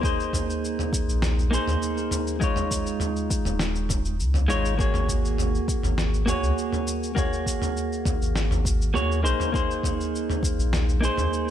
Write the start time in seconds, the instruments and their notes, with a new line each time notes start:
0.01 clean electric guitar A#3 D#4 G#4 C5, kick, cabasa
0.20 cabasa
0.33 kick, mid tom, cabasa
0.50 cabasa
0.65 cabasa
0.79 mid tom, cabasa
0.93 kick, cabasa
1.08 sub bass A#1, cabasa
1.22 snare, mid tom, cabasa
1.39 cabasa
1.51 clean electric guitar A#3 D#4 G#4 C5, cabasa
1.67 sub bass D#2, mid tom, cabasa
1.82 cabasa
1.97 cabasa
2.11 mid tom, cabasa
2.27 cabasa
2.40 clean electric guitar G#3 D#4 F4 C#5, kick, cabasa
2.56 mid tom, cabasa
2.71 kick, cabasa
2.87 cabasa
3.00 mid tom, cabasa
3.16 cabasa
3.30 kick, cabasa
3.45 sub bass D#1, mid tom, cabasa
3.59 snare, cabasa
3.75 cabasa
3.89 kick, mid tom, cabasa
4.05 cabasa
4.20 sub bass C#2, cabasa
4.34 mid tom, cabasa
4.48 sub bass G#1, clean electric guitar G#3 D#4 F4 C#5, cabasa
4.65 cabasa
4.77 clean electric guitar A#3 F#4 G#4 C#5, kick, cabasa
4.94 mid tom, cabasa
5.08 kick, cabasa
5.25 cabasa
5.38 mid tom, cabasa
5.55 cabasa
5.68 kick, cabasa
5.83 sub bass G#1, mid tom, cabasa
5.98 snare, cabasa
6.14 cabasa
6.26 clean electric guitar A#3 F#4 G#4 C#5, mid tom, cabasa
6.43 sub bass C#2, cabasa
6.58 cabasa
6.73 mid tom, cabasa
6.87 cabasa
7.03 cabasa
7.15 clean electric guitar A#3 F#4 G#4 C#5, kick, mid tom, cabasa
7.33 cabasa
7.46 kick, cabasa
7.62 mid tom, cabasa
7.77 cabasa
7.92 cabasa
8.05 kick, mid tom, cabasa
8.21 sub bass G#1, cabasa
8.36 snare, cabasa
8.51 mid tom, cabasa
8.65 kick, cabasa
8.82 cabasa
8.94 sub bass D#2, clean electric guitar A#3 F#4 G#4 C#5, mid tom, cabasa
9.12 cabasa
9.23 sub bass A#1, clean electric guitar A#3 D#4 G#4 C5, cabasa
9.40 mid tom, cabasa
9.52 clean electric guitar A#3 D#4 G#4 C5, kick, cabasa
9.71 cabasa
9.83 kick, mid tom, cabasa
10.01 cabasa
10.15 cabasa
10.30 mid tom, cabasa
10.43 kick, cabasa
10.59 sub bass A#1, cabasa
10.73 snare, mid tom, cabasa
10.89 cabasa
11.01 clean electric guitar A#3 D#4 G#4, cabasa
11.05 clean electric guitar C5
11.17 sub bass D#2, mid tom, cabasa
11.33 cabasa